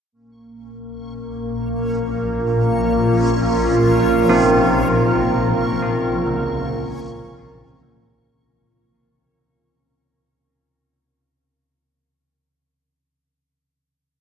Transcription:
0.12 8.44 A#1 medium
0.12 8.44 A#2 medium
0.12 8.33 A#3 medium
0.12 8.35 C#4 medium
0.12 8.36 C#6 medium
2.03 8.34 F4 medium
2.91 8.34 A#4 medium
4.29 10.47 C4 medium
6.26 12.46 C#3 soft

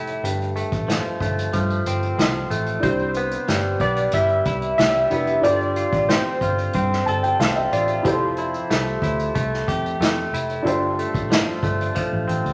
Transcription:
0.00 0.17 F1 medium
0.00 0.27 F3 medium
0.00 0.55 A3 medium
0.00 0.30 E4 medium
0.00 0.59 G4 medium
0.07 closed hi-hat soft
0.24 0.62 G1 medium
0.24 2.84 G2 medium
0.24 closed hi-hat medium
0.42 closed hi-hat soft
0.56 1.20 A3 medium
0.56 closed hi-hat medium
0.72 0.98 A1 medium
0.72 kick medium
0.72 closed hi-hat soft
0.88 1.52 F3 medium
0.88 snare medium
0.88 closed hi-hat medium
1.05 closed hi-hat soft
1.20 1.47 G1 medium
1.20 2.49 A3 medium
1.20 kick medium
1.20 closed hi-hat medium
1.39 closed hi-hat medium
1.53 1.80 G2 loud
1.53 2.18 F3 medium
1.53 kick medium
1.53 closed hi-hat medium
1.70 closed hi-hat soft
1.86 2.12 G1 medium
1.86 3.20 C4 medium
1.86 closed hi-hat medium
2.03 closed hi-hat soft
2.18 2.44 C2 medium
2.18 2.90 F3 medium
2.18 snare medium
2.18 closed hi-hat medium
2.50 2.77 A1 medium
2.50 2.90 A3 medium
2.50 closed hi-hat medium
2.66 closed hi-hat soft
2.80 3.36 C2 medium
2.80 5.06 D4 medium
2.80 5.07 E4 medium
2.80 5.07 G4 medium
2.80 3.77 C5 medium
2.80 kick medium
2.80 closed hi-hat medium
2.99 closed hi-hat soft
3.14 3.80 B3 medium
3.14 closed hi-hat medium
3.31 closed hi-hat soft
3.48 3.75 G1 medium
3.48 4.14 G3 medium
3.48 snare medium
3.48 closed hi-hat medium
3.80 4.07 B1 medium
3.80 5.10 B3 medium
3.80 4.15 D5 medium
3.80 kick medium
3.80 closed hi-hat medium
3.96 closed hi-hat soft
4.12 4.40 G1 medium
4.12 4.79 G3 medium
4.12 4.77 E5 medium
4.12 kick medium
4.12 closed hi-hat medium
4.29 closed hi-hat soft
4.45 4.72 C2 medium
4.45 5.51 E4 medium
4.45 kick medium
4.45 closed hi-hat medium
4.62 closed hi-hat soft
4.78 5.05 C2 medium
4.78 5.43 G3 medium
4.78 5.40 E5 medium
4.78 snare medium
4.78 closed hi-hat medium
4.94 closed hi-hat soft
5.10 5.38 F1 medium
5.10 5.51 B3 medium
5.10 5.40 D4 soft
5.10 5.44 E4 soft
5.10 5.44 G4 soft
5.10 5.45 B4 soft
5.10 closed hi-hat medium
5.27 closed hi-hat soft
5.41 5.83 G1 medium
5.41 8.04 G3 medium
5.41 8.00 D4 medium
5.41 8.00 F4 medium
5.41 8.01 A4 medium
5.41 6.05 D5 medium
5.41 closed hi-hat medium
5.46 8.02 C5 medium
5.61 closed hi-hat soft
5.76 6.42 F4 medium
5.76 closed hi-hat medium
5.93 6.19 A1 medium
5.93 kick medium
5.93 closed hi-hat soft
6.09 6.75 C4 medium
6.09 7.35 C5 medium
6.09 snare medium
6.09 closed hi-hat medium
6.41 6.67 G1 medium
6.41 7.72 F4 medium
6.41 kick medium
6.41 closed hi-hat medium
6.58 closed hi-hat soft
6.73 7.01 G2 medium
6.73 7.39 C4 medium
6.73 kick medium
6.73 closed hi-hat medium
6.93 snare soft
7.06 7.33 G1 medium
7.06 9.68 A4 medium
7.06 7.22 A5 medium
7.06 closed hi-hat medium
7.23 7.39 G5 medium
7.23 closed hi-hat soft
7.39 7.66 C2 medium
7.39 8.70 C4 medium
7.39 7.55 F5 medium
7.39 snare medium
7.39 closed hi-hat medium
7.55 7.71 E5 medium
7.55 closed hi-hat soft
7.72 7.99 A1 medium
7.72 8.38 F4 medium
7.72 8.03 D5 medium
7.72 closed hi-hat medium
7.88 closed hi-hat soft
8.02 8.57 F1 medium
8.02 10.69 F3 medium
8.02 10.61 E4 medium
8.02 10.61 G4 medium
8.02 10.62 A4 medium
8.02 kick loud
8.02 closed hi-hat medium
8.08 10.63 C5 medium
8.37 9.02 E4 medium
8.37 closed hi-hat medium
8.54 closed hi-hat soft
8.70 8.96 C2 medium
8.70 9.35 A3 medium
8.70 snare medium
8.70 closed hi-hat medium
8.86 closed hi-hat soft
9.02 9.28 D2 medium
9.02 10.33 E4 medium
9.02 kick medium
9.02 closed hi-hat medium
9.19 closed hi-hat medium
9.35 9.62 C2 loud
9.35 10.00 A3 medium
9.35 kick medium
9.35 closed hi-hat medium
9.54 snare soft
9.68 9.94 F2 medium
9.68 11.02 G4 medium
9.68 kick medium
9.68 closed hi-hat medium
9.86 closed hi-hat soft
10.00 10.27 F2 medium
10.00 10.99 A3 medium
10.00 snare loud
10.00 closed hi-hat medium
10.32 10.59 F1 medium
10.32 10.73 E4 medium
10.32 closed hi-hat medium
10.50 closed hi-hat soft
10.62 11.05 G1 medium
10.62 12.53 G2 medium
10.62 12.53 D4 medium
10.62 12.53 F4 medium
10.62 12.53 A4 medium
10.66 12.53 C5 medium
10.66 closed hi-hat medium
10.99 11.62 A3 medium
10.99 closed hi-hat medium
11.14 11.41 A1 medium
11.14 kick medium
11.14 closed hi-hat soft
11.30 11.94 F3 medium
11.30 snare medium
11.30 closed hi-hat medium
11.63 11.89 G1 medium
11.63 12.53 A3 medium
11.63 kick medium
11.63 closed hi-hat medium
11.81 closed hi-hat soft
11.95 12.53 F3 medium
11.95 kick medium
11.95 closed hi-hat medium
12.13 12.26 A1 medium
12.28 12.42 A1 medium
12.28 12.53 C4 medium
12.28 closed hi-hat medium
12.45 12.53 D2 medium
12.45 closed hi-hat soft

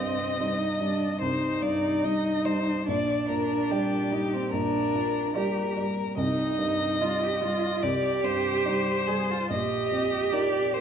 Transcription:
0.00 1.17 C2 medium
0.00 0.63 G2 soft
0.00 0.60 C4 medium
0.00 1.20 D#5 medium
0.40 0.76 G3 soft
0.40 0.76 D#4 soft
0.40 0.77 D#5 soft
0.58 0.79 D#4 medium
0.78 1.46 G3 soft
0.78 1.20 D4 medium
1.20 2.83 C2 soft
1.20 2.83 D#4 medium
1.20 1.64 C5 medium
1.62 2.28 G2 soft
1.62 2.06 D5 medium
2.04 2.41 G3 soft
2.04 2.41 D#4 soft
2.04 2.41 D#5 soft
2.04 2.47 D#5 medium
2.45 2.86 G3 soft
2.45 2.86 C5 medium
2.86 4.48 A#1 medium
2.86 4.13 D4 medium
2.86 3.28 D5 medium
3.28 3.94 A#2 soft
3.28 3.72 A#4 medium
3.70 4.07 G3 soft
3.70 4.51 G4 medium
3.70 4.07 G4 soft
3.70 4.07 D5 soft
4.11 4.77 G3 soft
4.11 4.35 D#4 medium
4.34 4.53 C4 medium
4.51 6.14 A#1 medium
4.51 5.37 D4 medium
4.51 5.33 A#4 medium
4.95 5.60 A#2 soft
5.35 5.72 G3 soft
5.35 5.72 G4 soft
5.35 5.76 G4 medium
5.35 6.16 A#4 medium
5.35 5.72 D5 soft
5.77 6.18 G3 soft
6.17 7.78 C2 medium
6.17 7.02 D#4 medium
6.17 7.84 D#5 medium
6.59 7.24 G2 soft
7.01 7.37 G3 soft
7.01 7.38 D#4 soft
7.01 7.24 F4 medium
7.01 7.38 D#5 soft
7.23 7.43 G4 medium
7.41 8.07 G3 soft
7.41 7.84 F4 medium
7.82 9.46 C2 medium
7.82 9.08 G4 loud
7.82 8.25 D5 medium
8.23 8.90 G2 soft
8.23 9.49 C5 medium
8.65 9.03 G3 soft
8.65 9.03 D#4 soft
8.65 9.04 D5 soft
9.07 9.50 G3 soft
9.07 9.32 G#4 medium
9.31 9.53 F4 medium
9.50 10.81 A#1 medium
9.50 10.81 G4 loud
9.50 10.35 D#5 medium
9.91 10.58 F2 soft
10.32 10.70 A#3 soft
10.32 10.70 D#4 soft
10.32 10.70 F4 soft
10.32 10.75 D5 medium
10.74 10.81 A#3 soft
10.74 10.81 C5 medium

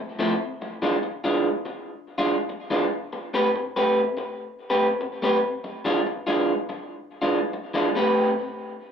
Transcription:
0.19 0.32 F3 medium
0.19 0.32 A3 medium
0.19 0.33 C4 medium
0.19 0.33 E4 medium
0.62 muted clean electric guitar stroke soft
0.82 0.95 E3 medium
0.82 0.95 G#3 medium
0.82 0.96 D4 medium
0.82 0.96 F4 medium
1.03 muted clean electric guitar stroke soft
1.24 1.48 E3 medium
1.24 1.48 G#3 medium
1.24 1.48 D4 medium
1.24 1.48 F4 medium
1.65 muted clean electric guitar stroke medium
2.18 2.35 E3 medium
2.18 2.35 G#3 medium
2.18 2.35 D4 medium
2.18 2.35 F4 medium
2.49 muted clean electric guitar stroke soft
2.70 2.84 E3 medium
2.70 2.84 G#3 medium
2.70 2.85 D4 medium
2.70 2.85 F4 loud
3.13 muted clean electric guitar stroke soft
3.34 3.47 A3 medium
3.34 3.48 C4 medium
3.34 3.48 G4 medium
3.34 3.48 B4 medium
3.56 muted clean electric guitar stroke soft
3.76 4.01 A3 medium
3.76 4.01 C4 medium
3.76 4.01 G4 medium
3.76 4.00 B4 medium
4.17 muted clean electric guitar stroke soft
4.70 4.88 A3 medium
4.70 4.87 C4 medium
4.70 4.87 G4 medium
4.70 4.87 B4 medium
5.01 muted clean electric guitar stroke soft
5.22 5.36 A3 medium
5.22 5.37 C4 medium
5.22 5.37 G4 medium
5.22 5.37 B4 medium
5.64 muted clean electric guitar stroke soft
5.85 5.99 E3 medium
5.85 5.99 G#3 medium
5.85 6.00 D4 medium
5.85 6.00 F4 medium
6.06 muted clean electric guitar stroke soft
6.27 6.53 E3 medium
6.27 6.52 G#3 medium
6.27 6.52 D4 medium
6.27 6.52 F4 medium
6.69 muted clean electric guitar stroke soft
7.22 7.40 E3 medium
7.22 7.39 G#3 medium
7.22 7.39 D4 medium
7.22 7.39 F4 medium
7.53 muted clean electric guitar stroke soft
7.74 7.88 E3 medium
7.74 7.89 G#3 medium
7.74 7.89 D4 medium
7.74 7.89 F4 medium
7.95 8.30 A3 medium
7.95 8.30 C4 medium
7.95 8.30 G4 medium
7.95 8.30 B4 medium

